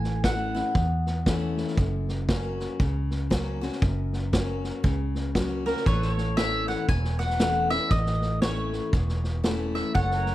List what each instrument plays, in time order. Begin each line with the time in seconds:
Already playing: fingered electric bass A1, steel-string acoustic guitar A2, mandolin G#5
0.04 snare
0.24 steel-string acoustic guitar E3 A3 C#4 E4, mandolin F#5, kick, snare, hi-hat pedal
0.55 steel-string acoustic guitar C#4 E4, snare
0.75 fingered electric bass E2, steel-string acoustic guitar E2, kick, snare
1.06 snare
1.26 steel-string acoustic guitar E3 A3 C#4 E4, kick, snare, hi-hat pedal
1.57 snare
1.67 snare
1.77 fingered electric bass F#1, steel-string acoustic guitar F#2, kick, snare
2.08 snare
2.28 steel-string acoustic guitar F#3 A#3 C#4 F#4, kick, snare, hi-hat pedal
2.59 snare
2.80 fingered electric bass C#2, steel-string acoustic guitar C#3, kick, snare
3.11 snare
3.30 steel-string acoustic guitar F#3 A#3 C#4 F#4, kick, snare, hi-hat pedal
3.61 steel-string acoustic guitar C#4 F#4, snare
3.72 snare
3.82 fingered electric bass F#1, steel-string acoustic guitar F#2, kick, snare
4.13 snare
4.33 steel-string acoustic guitar F#3 A#3 C#4 F#4, kick, snare, hi-hat pedal
4.64 snare
4.84 fingered electric bass C#2, steel-string acoustic guitar C#3, kick, snare
5.15 snare
5.35 steel-string acoustic guitar F#3 A#3 C#4 F#4, kick, snare, hi-hat pedal
5.66 steel-string acoustic guitar C#4 F#4, mandolin A#4, snare
5.76 snare
5.86 fingered electric bass A1, steel-string acoustic guitar A2, pedal steel guitar A4 B4, mandolin C#5, kick, snare
6.02 snare
6.12 pedal steel guitar C#5
6.17 snare
6.37 steel-string acoustic guitar E3 A3 C#4 E4, mandolin E5, snare, hi-hat pedal
6.68 mandolin F#5, snare
6.89 fingered electric bass E1, steel-string acoustic guitar E2, mandolin G#5, kick, snare
7.04 snare
7.19 mandolin F#5, snare
7.30 snare
7.39 steel-string acoustic guitar E3 A3 C#4 E4, snare, hi-hat pedal
7.70 steel-string acoustic guitar C#4 E4, mandolin E5, snare
7.91 fingered electric bass A1, steel-string acoustic guitar A2, mandolin D#5, kick, snare
8.06 snare
8.21 snare
8.42 steel-string acoustic guitar E3 A3 C#4 E4, mandolin C#5, snare, hi-hat pedal
8.73 snare
8.93 fingered electric bass E1, steel-string acoustic guitar E2, kick, snare
9.08 snare
9.24 snare
9.44 steel-string acoustic guitar E3 A3 C#4 E4, snare, hi-hat pedal
9.75 mandolin E5, snare
9.95 fingered electric bass F#1, steel-string acoustic guitar F#2, pedal steel guitar A4 C#5, mandolin F#5, kick, snare
10.11 snare
10.16 pedal steel guitar A#4
10.26 snare